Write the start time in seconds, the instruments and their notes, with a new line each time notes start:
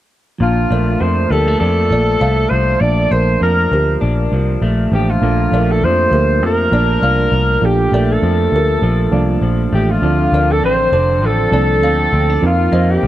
0.38 picked electric bass A#1, clean electric guitar A#2, reed electric piano F3 A#3 D4, alto saxophone F4
0.44 reed electric piano A5
0.71 picked electric bass A#1, clean electric guitar A3, kalimba A#4 D5
1.00 picked electric bass F2, clean electric guitar F3, alto saxophone C5
1.31 picked electric bass D2, clean electric guitar G3, kalimba G4 A#4, alto saxophone A4
1.48 clean electric guitar A3
1.60 picked electric bass F2, clean electric guitar D4, alto saxophone A4
1.90 picked electric bass A#1, clean electric guitar F3, kalimba A#3 D5
2.20 picked electric bass C2, clean electric guitar A3, kalimba D5 F5
2.49 picked electric bass C2, clean electric guitar F3, alto saxophone C5
2.79 picked electric bass A#1, reed electric piano F3 A#3 D4, alto saxophone D5
2.84 reed electric piano A5
3.11 picked electric bass A#1, kalimba A#4 D5, alto saxophone C5
3.41 picked electric bass F2, clean electric guitar F3, alto saxophone A#4
3.72 picked electric bass D2, kalimba G4 A#4
4.01 picked electric bass A#1, clean electric guitar D4
4.32 picked electric bass C2, clean electric guitar F3
4.62 picked electric bass A#1, clean electric guitar A3
4.91 picked electric bass A1, reed electric piano F3 A#3 D4 A4, clean electric guitar F3, alto saxophone G4
5.10 alto saxophone F4
5.21 picked electric bass A#1, clean electric guitar A#2, reed electric piano F3 A#3 D4 A4
5.52 picked electric bass A#1, clean electric guitar A3, kalimba A#4 D5
5.71 alto saxophone A4
5.82 picked electric bass F2, clean electric guitar F3, alto saxophone C5
6.12 picked electric bass D2, kalimba G4 A#4
6.42 picked electric bass F2, clean electric guitar F3, alto saxophone A#4
6.71 picked electric bass A#1, reed electric piano F3 A#3 D4 A5, clean electric guitar D4, kalimba A#4 D5
7.02 picked electric bass C2, clean electric guitar F3, kalimba D5 F5
7.32 picked electric bass C2
7.62 picked electric bass A#1, reed electric piano F3 A#3 D4 A4, alto saxophone G4
7.92 picked electric bass A#1, clean electric guitar A3, kalimba A#4 D5
8.12 alto saxophone A4
8.22 picked electric bass F2, clean electric guitar F3
8.52 picked electric bass D2, kalimba A#4
8.57 kalimba G4
8.82 picked electric bass A#1, clean electric guitar F3
9.12 picked electric bass C2, reed electric piano F3 A#3 D4 F4, clean electric guitar D4
9.42 picked electric bass A#1, clean electric guitar F3
9.73 picked electric bass A1, clean electric guitar A3, alto saxophone G4
9.91 alto saxophone F4
10.02 picked electric bass D2, clean electric guitar D3, reed electric piano F3 C4 D4 A4
10.32 picked electric bass D2, clean electric guitar D4, kalimba A#4 D5
10.52 alto saxophone A4
10.62 picked electric bass A1, clean electric guitar C4, alto saxophone C5
10.92 picked electric bass F1, clean electric guitar D4, kalimba A4 C5
11.22 picked electric bass A1, clean electric guitar F3, alto saxophone A4
11.51 picked electric bass C2, reed electric piano F3 C4 D4 A4, kalimba A#3 D5, clean electric guitar A4
11.82 picked electric bass D2, clean electric guitar C4, kalimba D5 F5
12.13 picked electric bass D2, clean electric guitar C4
12.30 clean electric guitar D4
12.42 clean electric guitar F2, picked electric bass F2, reed electric piano F3 C4 D#4 A#4
12.46 alto saxophone F4
12.72 picked electric bass F2, clean electric guitar A#3, kalimba C5 D#5
12.91 alto saxophone G4
13.03 picked electric bass C2, clean electric guitar D#3